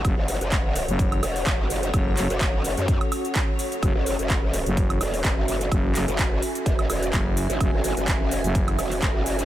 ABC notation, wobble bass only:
X:1
M:4/4
L:1/16
Q:"Swing 16ths" 1/4=127
K:F#m
V:1 name="Wobble bass" clef=bass
z F,,,2 F,,,4 z3 E,,,2 F,,,4 | z3 F,,,3 F,,, F,,2 z6 z | z F,,,2 F,,,4 z3 E,,,2 F,,,4 | z3 F,,,3 z2 F,,, F,,, E,,,2 z3 G,,, |
z F,,,2 F,,,4 z3 E,,,2 F,,,4 |]